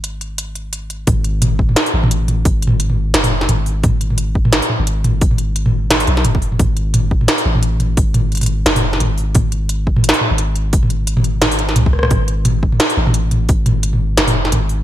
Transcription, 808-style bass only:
0.00 1.06 G#1 medium
1.08 1.76 G#1 loud
1.94 2.45 A1 medium
2.46 3.14 G#1 loud
3.14 3.48 F#1 loud
3.49 4.61 G#1 medium
4.80 6.07 G#1 medium
6.08 6.26 B1 medium
6.25 6.58 F#1 medium
6.60 7.28 G#1 loud
7.46 7.96 A1 loud
7.97 8.65 G#1 loud
8.66 9.00 F#1 loud
9.00 10.13 G#1 medium
10.31 11.78 G#1 medium
11.76 12.10 C#2 loud
12.11 12.79 G#1 loud
12.97 13.48 A1 medium
13.49 14.17 G#1 loud
14.18 14.52 F#1 loud
14.52 14.83 G#1 medium

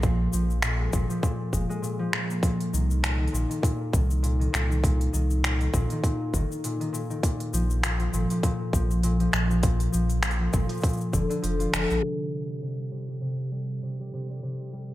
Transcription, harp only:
0.00 0.62 A#2 loud
0.00 0.32 F3 medium
0.00 0.79 G#3 medium
0.33 1.08 F3 medium
0.63 0.92 A#2 medium
0.80 1.51 G#3 medium
0.94 1.21 A#2 medium
1.09 1.98 F3 medium
1.22 1.81 A#2 medium
1.52 1.68 G#3 medium
1.70 2.49 G#3 medium
1.82 2.12 A#2 medium
1.99 2.49 F3 medium
2.13 2.42 A#2 medium
2.30 5.51 A#3 medium
2.43 2.79 A#2 loud
2.73 3.09 D#3 medium
3.03 3.24 A#2 medium
3.19 3.39 D#3 medium
3.33 3.54 A#2 loud
3.49 3.69 D#3 medium
3.62 3.99 A#2 loud
3.92 4.29 D#3 medium
4.23 4.44 A#2 medium
4.40 4.59 D#3 medium
4.53 4.74 A#2 medium
4.70 4.89 D#3 medium
4.83 5.19 A#2 loud
5.13 5.49 D#3 medium
5.44 5.64 A#2 medium
5.60 5.79 D#3 medium
5.74 5.94 A#2 medium
5.92 6.09 D#3 medium
6.04 6.39 A#2 medium
6.34 6.69 D#3 medium
6.64 6.84 A#2 medium
6.80 6.99 D#3 medium
6.93 7.14 A#2 medium
7.10 7.29 D#3 medium
7.23 7.83 A#2 medium
7.53 7.98 F3 medium
7.84 8.12 A#2 medium
8.00 8.30 F3 medium
8.13 8.42 A#2 loud
8.31 8.72 F3 medium
8.43 9.02 A#2 loud
8.74 9.19 F3 medium
9.04 9.32 A#2 medium
9.20 9.48 F3 medium
9.33 9.61 A#2 loud
9.49 9.91 F3 medium
9.62 10.21 A#2 loud
9.92 10.38 F3 medium
10.22 10.51 A#2 medium
10.40 10.68 F3 medium
10.53 10.81 A#2 loud
10.69 11.19 F3 medium
10.82 11.19 A#2 loud
11.12 11.28 D3 medium
11.30 11.72 D3 medium
11.42 11.79 F3 medium
11.59 14.12 F4 medium
11.73 12.09 D3 loud
11.90 12.09 G#3 medium
12.03 12.61 C3 medium
12.33 12.77 G3 medium
12.62 12.90 C3 medium
12.79 13.07 G3 medium
12.92 13.20 C3 medium
13.08 13.50 G3 medium
13.21 13.81 C3 medium
13.52 13.99 G3 medium
13.83 14.12 C3 medium
14.00 14.29 G3 medium
14.13 14.42 C3 medium
14.30 14.71 G3 medium
14.43 14.94 C3 medium
14.73 14.94 G3 medium

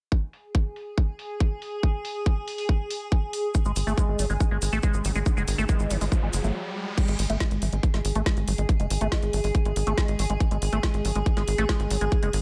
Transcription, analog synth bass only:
3.65 3.73 G#1 medium
3.76 3.84 G#1 loud
3.87 3.94 G#1 medium
4.08 4.16 G#1 medium
4.19 4.27 G#1 medium
4.30 4.37 G#1 medium
4.51 4.59 G#1 medium
4.62 4.69 G#1 loud
4.73 4.80 A1 medium
4.94 5.02 G#1 medium
5.05 5.12 G#1 loud
5.15 5.23 G#1 medium
5.37 5.44 F#1 medium
5.48 5.55 G#1 loud
5.58 5.66 G#1 medium
5.80 5.87 G#1 medium
5.90 5.98 G#1 medium
6.01 6.09 G#1 medium
6.23 6.30 G#1 medium
6.33 6.41 F#1 loud
6.44 6.52 G#1 medium
7.08 7.16 G#1 medium
7.19 7.27 G#1 loud
7.30 7.37 G#1 medium
7.51 7.59 G#1 medium
7.62 7.69 G#1 medium
7.73 7.80 G#1 medium
7.94 8.02 G#1 medium
8.05 8.12 G#1 loud
8.15 8.23 A1 medium
8.37 8.44 G#1 medium
8.48 8.55 G#1 loud
8.58 8.66 G#1 medium
8.80 8.87 F#1 medium
8.90 8.98 G#1 loud
9.01 9.09 G#1 medium
9.23 9.30 G#1 medium
9.33 9.41 G#1 loud
9.44 9.52 G#1 medium
9.65 9.73 G#1 medium
9.76 9.84 G#1 loud
9.87 9.94 G#1 medium
10.08 10.16 G#1 medium
10.19 10.27 G#1 loud
10.30 10.37 G#1 medium
10.51 10.59 G#1 medium
10.62 10.69 G#1 loud
10.73 10.80 G#1 medium
10.94 11.02 G#1 medium
11.05 11.12 G#1 medium
11.15 11.23 G#1 medium
11.37 11.44 G#1 medium
11.48 11.55 G#1 loud
11.58 11.66 A1 medium
11.80 11.87 G#1 medium
11.90 11.98 G#1 loud
12.01 12.09 G#1 medium
12.23 12.30 F#1 medium
12.33 12.41 G#1 loud

